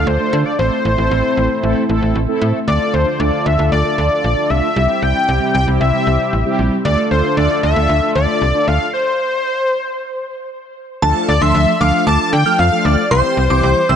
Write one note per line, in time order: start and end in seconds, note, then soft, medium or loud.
0.00 0.57 D3 medium
0.00 0.11 A3 medium
0.00 0.11 D4 medium
0.00 0.57 D4 medium
0.00 0.11 F4 medium
0.00 0.57 F4 medium
0.00 0.11 A4 medium
0.00 0.57 A4 medium
0.07 0.18 D2 loud
0.07 0.47 C5 loud
0.20 0.50 A3 medium
0.20 0.50 D4 medium
0.20 0.50 F4 medium
0.20 0.50 A4 medium
0.33 0.44 D3 loud
0.46 0.58 D5 loud
0.59 0.70 A1 loud
0.59 2.65 A3 medium
0.59 0.90 A3 medium
0.59 2.65 C4 medium
0.59 0.90 C4 medium
0.59 2.65 E4 medium
0.59 0.90 E4 medium
0.59 0.90 A4 medium
0.59 2.11 C5 loud
0.85 0.96 A1 loud
0.98 1.09 A1 loud
0.98 1.49 A3 medium
0.98 1.49 C4 medium
0.98 1.49 E4 medium
0.98 1.49 A4 medium
1.11 1.22 A1 loud
1.37 1.48 A1 loud
1.63 1.74 A1 loud
1.63 1.84 A3 medium
1.63 1.84 C4 medium
1.63 1.84 E4 medium
1.63 1.84 A4 loud
1.89 2.00 A1 loud
1.89 2.20 A3 medium
1.89 2.20 C4 medium
1.89 2.20 E4 medium
1.89 2.20 A4 loud
2.02 2.13 A1 medium
2.15 2.26 A1 loud
2.28 2.59 A3 medium
2.28 2.59 C4 medium
2.28 2.59 E4 medium
2.28 2.59 A4 loud
2.41 2.52 A2 loud
2.67 2.79 D2 loud
2.67 4.74 D3 medium
2.67 3.08 A3 medium
2.67 3.08 D4 medium
2.67 4.74 D4 medium
2.67 3.08 F4 medium
2.67 4.74 F4 medium
2.67 3.08 A4 medium
2.67 4.74 A4 medium
2.67 2.95 D5 medium
2.94 3.05 D2 loud
2.94 3.21 C5 medium
3.20 3.31 D2 loud
3.20 3.50 A3 medium
3.20 3.50 D4 medium
3.20 3.50 F4 medium
3.20 3.50 A4 medium
3.20 3.47 D5 medium
3.46 3.57 D2 loud
3.46 3.71 E5 medium
3.59 3.70 D2 loud
3.59 3.79 A3 medium
3.59 3.79 D4 medium
3.59 3.79 F4 medium
3.59 3.79 A4 medium
3.72 3.83 D2 loud
3.72 3.96 D5 medium
3.85 4.26 A3 medium
3.85 4.26 D4 medium
3.85 4.26 F4 medium
3.85 4.26 A4 medium
3.98 4.09 D2 loud
3.98 4.52 D5 loud
4.24 4.35 A#1 loud
4.37 4.68 A3 medium
4.37 4.68 D4 medium
4.37 4.68 F4 medium
4.37 4.68 A4 medium
4.50 4.61 C2 medium
4.50 5.04 E5 loud
4.76 4.87 C2 loud
4.76 6.83 C3 medium
4.76 5.17 G3 medium
4.76 6.83 C4 medium
4.76 5.17 C4 medium
4.76 6.83 E4 medium
4.76 5.17 E4 medium
4.76 5.17 G4 medium
4.76 6.83 G4 medium
5.02 5.13 C2 medium
5.02 5.54 G5 loud
5.28 5.39 C2 loud
5.28 5.59 G3 medium
5.28 5.59 C4 medium
5.28 5.59 E4 medium
5.28 5.59 G4 medium
5.54 5.66 C2 loud
5.54 5.66 G5 loud
5.67 5.79 C2 medium
5.67 5.88 G3 medium
5.67 5.88 C4 medium
5.67 5.88 E4 medium
5.67 5.88 G4 medium
5.80 5.92 C2 loud
5.80 6.55 E5 medium
5.94 6.34 G3 medium
5.94 6.34 C4 medium
5.94 6.34 E4 medium
5.94 6.34 G4 medium
6.07 6.18 C2 loud
6.33 6.44 A1 medium
6.46 6.76 G3 medium
6.46 6.76 C4 medium
6.46 6.76 E4 medium
6.46 6.76 G4 loud
6.59 6.70 A#1 medium
6.85 6.96 D2 loud
6.85 8.92 D3 medium
6.85 7.26 A3 medium
6.85 7.26 D4 medium
6.85 8.92 D4 medium
6.85 8.92 F4 medium
6.85 7.26 F4 medium
6.85 8.92 A4 medium
6.85 7.26 A4 medium
6.85 7.09 D5 medium
7.11 7.22 D2 medium
7.11 7.35 C5 medium
7.37 7.48 D2 loud
7.37 7.68 A3 medium
7.37 7.68 D4 medium
7.37 7.68 F4 medium
7.37 7.68 A4 medium
7.37 7.61 D5 medium
7.63 7.74 D2 loud
7.63 8.12 E5 loud
7.76 7.87 D2 medium
7.76 7.97 A3 medium
7.76 7.97 D4 medium
7.76 7.97 F4 medium
7.76 7.97 A4 medium
7.89 8.00 D2 loud
8.02 8.43 A3 medium
8.02 8.43 D4 medium
8.02 8.43 F4 medium
8.02 8.43 A4 medium
8.15 8.26 D2 loud
8.15 8.69 D5 loud
8.41 8.52 C2 medium
8.54 8.85 A3 medium
8.54 8.85 D4 medium
8.54 8.85 F4 medium
8.54 8.85 A4 medium
8.67 8.78 D2 loud
8.67 8.93 F5 loud
8.94 10.46 C5 loud
11.02 11.13 D2 loud
11.02 11.33 F3 medium
11.02 11.33 A3 medium
11.02 11.33 D4 medium
11.02 11.33 F4 medium
11.02 11.33 A4 loud
11.02 11.24 A5 loud
11.28 11.39 D2 loud
11.28 11.43 D5 loud
11.41 11.52 D2 loud
11.41 11.72 F3 medium
11.41 11.72 A3 medium
11.41 11.72 D4 medium
11.41 11.72 F4 medium
11.41 11.72 A4 medium
11.41 11.80 E5 loud
11.41 11.63 C6 medium
11.55 11.65 D2 loud
11.80 11.92 D2 loud
11.80 12.32 F3 medium
11.80 12.32 A3 medium
11.80 12.32 D4 medium
11.80 12.32 F4 medium
11.80 12.32 A4 medium
11.80 12.05 F5 loud
11.80 11.91 D6 medium
12.07 12.18 D2 loud
12.07 12.31 A5 loud
12.07 12.17 D6 medium
12.33 12.44 D3 loud
12.33 12.60 G5 loud
12.46 12.66 F3 medium
12.46 12.66 A3 medium
12.46 12.66 D4 medium
12.46 12.66 F4 medium
12.46 12.66 A4 medium
12.46 12.57 F6 medium
12.59 12.70 F2 loud
12.59 12.86 F5 loud
12.59 12.96 F6 medium
12.72 13.03 F3 medium
12.72 13.03 A3 medium
12.72 13.03 D4 medium
12.72 13.03 F4 medium
12.72 13.03 A4 medium
12.85 12.96 D2 loud
12.85 13.10 D5 loud
13.11 13.22 C2 loud
13.11 13.42 E3 medium
13.11 13.42 G3 medium
13.11 13.42 C4 medium
13.11 13.42 E4 medium
13.11 13.42 G4 medium
13.11 13.96 C5 loud
13.11 13.32 C6 loud
13.37 13.48 C2 medium
13.50 13.61 C2 medium
13.50 13.81 E3 medium
13.50 13.81 G3 medium
13.50 13.81 C4 medium
13.50 13.81 E4 medium
13.50 13.81 G4 medium
13.50 13.72 D6 medium
13.63 13.74 C2 loud
13.89 13.96 C2 loud
13.89 13.96 E3 medium
13.89 13.96 G3 medium
13.89 13.96 C4 medium
13.89 13.96 E4 medium
13.89 13.96 G4 loud
13.89 13.96 E6 medium